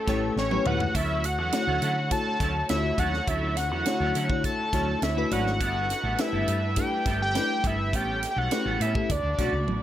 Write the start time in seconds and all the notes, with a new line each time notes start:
Already playing: A3 C#4 E4 G4 A4 B4 C#5
0.07 A1 G3 A3 B3 C#4 E4 G4 A4 C#5, kick, snare, closed hi-hat
0.22 muted clean electric guitar stroke
0.36 A1 C#5, snare
0.51 A3 C#4 E4 G4 B4, muted clean electric guitar stroke, high tom
0.65 D#2 G3 A3 B3 C#4 E4 G4 B4 F#5, mid tom
0.80 muted clean electric guitar stroke, floor tom
0.94 D2 D3 F#3 C#4 E4 F#4 A4 E5, kick, closed hi-hat
1.24 F#5, muted clean electric guitar stroke, closed hi-hat
1.38 E2 F#3 C#4 E4 A4
1.52 A3 D4 E4 F#4 C#5, muted clean electric guitar stroke, snare, closed hi-hat
1.67 D2 F#3 C#4 E4 A4
1.82 D3 F#3 C#4 E4 A4, closed hi-hat
1.97 muted clean electric guitar stroke
2.11 A3 D4 E4 F#4 C#5 A5, kick, closed hi-hat
2.27 muted clean electric guitar stroke
2.40 D2 F#3 C#4 E4 A4, kick, snare, closed hi-hat
2.55 muted clean electric guitar stroke
2.69 D2 A3 D4 E4 F4 C#5 E5, snare, closed hi-hat
2.76 F#4
2.84 muted clean electric guitar stroke
2.98 D#2 F#3 C#4 E4 A4 F#5, kick, closed hi-hat
3.13 muted clean electric guitar stroke, snare
3.28 D2 F#3 C#4 E4 A4 E5, kick, closed hi-hat
3.57 F#5, muted clean electric guitar stroke, snare, closed hi-hat
3.71 E2 F#3 C#4 E4 A4
3.85 A3 D4 E4 F#4 C#5, muted clean electric guitar stroke, snare, closed hi-hat
4.00 D2 F#3 C#4 E4 A4
4.15 D3 F#3 C#4 E4 A4, closed hi-hat
4.29 A3 D4 E4 F#4 C#5, muted clean electric guitar stroke, kick
4.44 A5, kick, closed hi-hat
4.59 muted clean electric guitar stroke
4.73 D2 F#3 A3 C#4 D4 E4 F#4 A4 C#5, kick, snare, closed hi-hat
4.88 muted clean electric guitar stroke
5.02 D2 E5, snare, closed hi-hat
5.16 A3 D4 E4 F#4 B4, muted clean electric guitar stroke
5.31 G#1 F#3 A3 C#4 D4 E4 F#4 B4 D5 F#5, closed hi-hat
5.46 muted clean electric guitar stroke, snare
5.60 G1 G3 B3 D4 E4 A4 B4, kick, closed hi-hat
5.89 muted clean electric guitar stroke, snare, closed hi-hat
6.03 A1 G3 B3 E4 A4
6.18 A3 D4 E4 G4 B4 E5, snare, closed hi-hat
6.33 G1 G3 B3 E4 A4
6.47 G2 G3 B3 E4 A4, closed hi-hat
6.62 muted clean electric guitar stroke
6.76 A3 D4 E4 G4 A4 G5, kick, closed hi-hat
6.91 muted clean electric guitar stroke
7.06 G1 G3 B3 E4 A4, kick, snare, closed hi-hat
7.21 G5, muted clean electric guitar stroke
7.34 A3 D4 E4 G4 B4, snare, closed hi-hat
7.50 muted clean electric guitar stroke
7.63 G1 G3 B3 E4 A4 E5, kick, closed hi-hat
7.79 muted clean electric guitar stroke
7.93 A1 G3 A3 B3 C#4 G4 A4 G5, kick, closed hi-hat
8.23 muted clean electric guitar stroke, snare, closed hi-hat
8.31 G5
8.36 B1 G3 B3 C#4 A4 F#5
8.51 A3 C#4 E4 G4 B4, muted clean electric guitar stroke, snare, closed hi-hat
8.65 A1 G3 B3 C#4 A4
8.80 A2 G3 B3 C#4 A4 E5, closed hi-hat
8.95 A3 C#4 E4 G4 A4, muted clean electric guitar stroke, kick
9.10 D2 D3 E4 F#4 D5, kick, closed hi-hat
9.23 D2, muted clean electric guitar stroke
9.39 B1 A3 C#4 D4 F#4 A4 D5, kick, snare, closed hi-hat
9.52 C#2, muted clean electric guitar stroke
9.67 A1, high tom